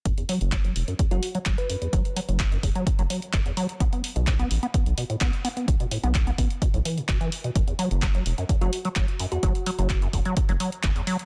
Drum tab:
HH |xxoxxxoxxxoxxxox|xxoxxxoxxxoxxxox|xxoxxxoxxxoxxxox|xxoxxxoxxxoxxxox|
CP |----x-------x---|----x-------x---|----x-------x---|----x-------x---|
BD |o---o---o---o---|o---o-o-o---o---|o---o---o---o---|o---o-o-o---o---|

HH |xxoxxxoxxxoxxxox|xxoxxxoxxxoxxxox|
CP |----x-------x---|----x-------x---|
BD |o---o---o---o---|o---o-o-o---o---|